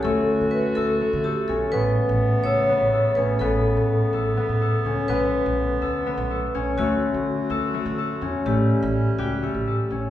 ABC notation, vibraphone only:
X:1
M:7/8
L:1/8
Q:1/4=125
K:D
V:1 name="Vibraphone"
A2 B A2 G A | B3 c3 B | A6- A | B6- B |
F6- F | G3 F G2 z |]